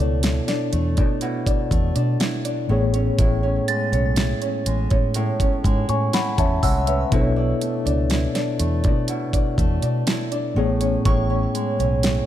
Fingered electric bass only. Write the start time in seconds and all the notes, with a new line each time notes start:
0.00 C#2
0.73 E2
0.98 B2
1.71 E2
1.96 B2
2.70 A1
3.19 A1
3.92 B1
4.66 A1
4.91 A2
5.65 G#2
5.89 A2
6.38 E2
6.63 C2
7.12 B1
7.86 C#2
8.60 E2
8.85 B2
9.58 E2
9.83 B2
10.57 A1
11.06 A1
11.80 B1